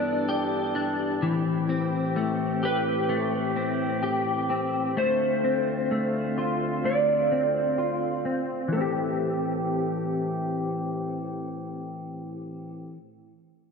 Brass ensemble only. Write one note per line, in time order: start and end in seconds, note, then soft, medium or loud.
0.00 1.20 G2 medium
0.00 1.20 E3 medium
0.00 1.20 D4 medium
0.00 1.21 A4 medium
1.23 4.94 A2 medium
1.23 4.94 E3 medium
1.23 8.55 C4 medium
1.23 4.94 G4 medium
4.97 8.55 D2 medium
4.97 8.55 D3 medium
4.97 8.55 F4 medium
8.72 12.97 A2 medium
8.72 12.98 E3 medium
8.72 12.97 C4 medium
8.72 12.97 G4 medium